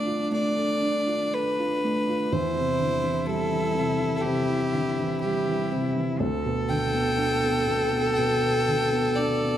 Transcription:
Already playing: felt piano D3 A3 D4 F4 A4, cello D4, fiddle D5
0.06 felt piano F4
0.31 felt piano A3, fiddle D5
0.56 felt piano A4
0.82 felt piano D4
1.07 felt piano F4
1.33 felt piano A4, fiddle B4
1.59 felt piano F4
1.84 felt piano A3
2.09 felt piano F4
2.30 felt piano E2, cello E4, fiddle C5
2.56 felt piano C3
2.79 felt piano D3
3.04 felt piano E3
3.26 felt piano G3, fiddle A4
3.51 felt piano E3
3.75 felt piano C3
4.00 felt piano E3
4.16 fiddle A4
4.21 felt piano C3, fiddle G4
4.49 felt piano E4
4.74 felt piano D3
4.99 felt piano E3
5.20 felt piano G3, fiddle G4
5.47 felt piano E3
5.72 felt piano C3
5.96 felt piano E3
6.20 felt piano D2, cello A4
6.45 felt piano B2
6.69 felt piano D3, fiddle G5
6.94 felt piano B3
7.18 felt piano D4
7.44 felt piano B3
7.67 felt piano B2
7.92 felt piano B3
8.14 felt piano B2, fiddle G5
8.42 felt piano B4
8.68 felt piano D3
8.92 felt piano B3
9.16 felt piano D4, fiddle D5
9.44 felt piano B3

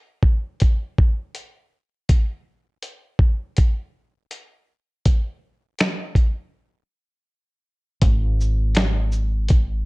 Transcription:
0.23 kick
0.60 kick, closed hi-hat
0.98 kick
1.35 closed hi-hat
2.09 kick, closed hi-hat
2.82 closed hi-hat
3.19 kick
3.57 kick, closed hi-hat
4.31 closed hi-hat
5.06 kick, closed hi-hat
5.79 finger snap, snare, closed hi-hat
6.15 kick, closed hi-hat
8.02 upright bass G#1, kick, closed hi-hat
8.41 shaker
8.75 finger snap, snare, closed hi-hat
9.12 shaker
9.48 kick, closed hi-hat

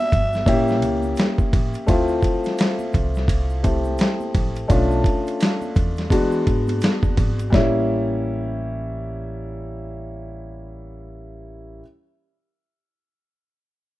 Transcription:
Already playing: upright piano G3 B3 D4 F#4, alto saxophone E5
0.12 upright bass G1, kick, ride, low conga, shaker
0.33 snare, shaker
0.46 upright bass A1, upright piano A#3 C#4 E4 G4, kick, ride, high conga, shaker
0.68 snare, shaker
0.82 upright bass C#2, ride, shaker
1.03 high conga, shaker
1.16 snare, hi-hat pedal, ride, shaker
1.38 kick, high conga, shaker
1.53 upright bass A1, kick, ride, low conga, shaker
1.74 ride, shaker
1.87 upright bass D2, upright piano A3 C4 E4 F4, kick, ride, shaker
2.08 shaker
2.22 kick, ride, shaker
2.44 snare, ride, shaker
2.58 snare, hi-hat pedal, ride, shaker
2.79 high conga, shaker
2.93 upright bass C2, kick, ride, low conga, shaker
3.15 snare, shaker
3.28 kick, ride, high conga, shaker
3.50 shaker
3.63 upright piano A3 C4 E4 G4, kick, ride, shaker
3.85 high conga, shaker
3.98 snare, hi-hat pedal, ride, shaker
4.20 high conga, shaker
4.35 upright bass A1, kick, ride, low conga, shaker
4.56 ride, shaker
4.68 upright bass B1, upright piano A3 C#4 D4 F4, kick, ride, shaker
4.91 shaker
5.04 kick, ride, shaker
5.27 ride, shaker
5.40 snare, hi-hat pedal, ride, shaker
5.62 high conga, shaker
5.76 upright bass E2, kick, ride, low conga, shaker
5.97 snare, ride, shaker
6.10 upright bass E3, upright piano G#3 B3 D4 F#4, kick, ride, high conga, shaker
6.32 shaker
6.47 upright bass G#2, kick, ride, shaker
6.68 ride, high conga, shaker
6.81 snare, hi-hat pedal, ride, shaker
7.03 upright bass E2, kick, high conga, shaker
7.17 upright bass G#1, kick, ride, low conga, shaker
7.39 ride, shaker
7.50 upright bass A1, upright piano G3 A#3 C#4, kick, snare, high conga
7.55 upright piano E4

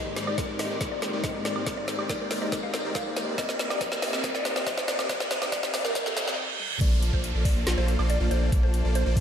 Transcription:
Already playing: string section G#2 D#3 A#3 C4 G4 D5, supersaw synth G#3 D#4 G4 A#4 C5 D5, synth pluck D#5, riser
0.16 snare, closed hi-hat
0.27 supersaw synth G#3 D#4 G4 A#4 C5 D5, synth pluck D5, high woodblock
0.38 kick, snare, closed hi-hat
0.49 supersaw synth G#3 D#4 G4 A#4 C5 D5
0.59 synth pluck D#5, snare, open hi-hat
0.70 supersaw synth G#3 D#4 G4 A#4 C5 D5
0.81 supersaw synth G#3 D#4 G4 A#4 C5 D5, kick, snare, closed hi-hat
0.92 supersaw synth G#3 D#4 G4 A#4 C5 D#5, synth pluck D5
1.02 snare, closed hi-hat
1.13 supersaw synth G#3 D#4 G4 A#4 C5 D5
1.24 synth pluck D#5, kick, snare, closed hi-hat
1.34 supersaw synth G#3 D#4 G4 A#4 C5 D5
1.45 supersaw synth G#3 D#4 G4 A#4 C5 D5, synth pluck D5, snare, closed hi-hat
1.56 high woodblock
1.66 supersaw synth G#3 D#4 G4 A#4 C5 D5, kick, snare, closed hi-hat
1.77 synth pluck D5
1.88 snare, closed hi-hat
1.99 supersaw synth G#3 D#4 G4 A#4 C5 D5, high woodblock
2.09 synth pluck D5, kick, snare, closed hi-hat
2.20 supersaw synth G#3 D#4 G4 A#4 C5 D5
2.31 snare, open hi-hat
2.42 supersaw synth G#3 D#4 G4 A#4 C5 D5, synth pluck D#5
2.52 supersaw synth G#3 D#4 G4 A#4 C5 D5, kick, snare, closed hi-hat
2.63 supersaw synth G#3 D#4 G4 A#4 C5 D#5, synth pluck F5
2.74 snare, closed hi-hat
2.85 supersaw synth G#3 D#4 G4 A#4 C5 D5
2.95 synth pluck F5, kick, snare, closed hi-hat
3.06 supersaw synth G#3 D#4 G4 A#4 C5 D5
3.16 supersaw synth G#3 D#4 G4 A#4 C5 D5, snare, closed hi-hat
3.38 string section C3 D#4, supersaw synth C4 G4 A#4 D5 D#5, synth pluck D#5, kick, snare, closed hi-hat
3.49 snare
3.59 snare, closed hi-hat
3.70 supersaw synth C4 G4 A#4 D5 D#5, synth pluck D5, snare, high woodblock
3.81 kick, snare, closed hi-hat
3.92 supersaw synth C4 G4 A#4 D5 D#5, snare
4.02 synth pluck D#5, snare, open hi-hat
4.13 supersaw synth C4 G4 A#4 D5 D#5, snare
4.24 supersaw synth C4 G4 A#4 D5 D#5, kick, snare, closed hi-hat
4.35 supersaw synth C4 G4 A#4 D5 D#5, synth pluck D5, snare
4.45 snare, closed hi-hat
4.56 supersaw synth C4 G4 A#4 D5 D#5, snare
4.66 synth pluck D#5, kick, snare, closed hi-hat
4.77 supersaw synth C4 G4 A#4 D5 D#5, snare
4.88 supersaw synth C4 G4 A#4 D5 D#5, synth pluck D5, snare, closed hi-hat
4.99 snare, high woodblock
5.09 supersaw synth C4 G4 A#4 D5 D#5, kick, snare, closed hi-hat
5.20 synth pluck D5, snare
5.31 snare, closed hi-hat
5.42 supersaw synth C4 G4 A#4 D5 D#5, snare, high woodblock
5.52 synth pluck D5, kick, snare, closed hi-hat
5.63 supersaw synth C4 G4 A#4 D5 D#5, snare
5.74 snare, open hi-hat, high woodblock
5.85 supersaw synth C4 G4 A#4 D5 D#5, synth pluck A#4, snare
5.95 supersaw synth C4 G4 A#4 D5 D#5, kick, snare, closed hi-hat, reverse cymbal
6.06 supersaw synth C4 G4 A#4 D5 D#5, synth pluck A4, snare
6.17 snare, closed hi-hat
6.27 supersaw synth C4 G4 A#4 D5 D#5, snare
6.60 high tom
6.71 mid tom
6.81 sub bass A#1, string section A3 A#3 D4, supersaw synth A#3 F4 A4 C5 D5, synth pluck D5, kick, closed hi-hat, crash, downlifter
7.03 closed hi-hat
7.13 sub bass A#1, supersaw synth A#3 F4 A4 C5 D5, synth pluck C5, kick
7.24 closed hi-hat
7.34 sub bass A#1, supersaw synth A#3 F4 A4 C5 D5
7.45 synth pluck D5, kick, open hi-hat
7.56 sub bass A#1, supersaw synth A#3 F4 A4 C5 D5
7.67 sub bass A#1, supersaw synth A#3 F4 A4 C5 D5, snare, closed hi-hat
7.77 sub bass A#1, supersaw synth A#3 F4 A4 C5 F5, synth pluck C5
7.88 closed hi-hat
7.99 sub bass A#1, supersaw synth A#3 F4 A4 C5 D5, high woodblock
8.10 synth pluck D5, closed hi-hat
8.20 sub bass A#1, supersaw synth A#3 F4 A4 C5 D5
8.31 sub bass A#1, supersaw synth A#3 F4 A4 C5 D5, synth pluck C5, closed hi-hat
8.52 sub bass A#1, supersaw synth A#3 F4 A4 C5 D5, kick, closed hi-hat
8.63 synth pluck C5
8.74 closed hi-hat
8.85 sub bass A#1, supersaw synth A#3 F4 A4 C5 D5
8.95 synth pluck C5, closed hi-hat
9.06 sub bass A#1, supersaw synth A#3 F4 A4 C5 D5
9.17 kick, open hi-hat

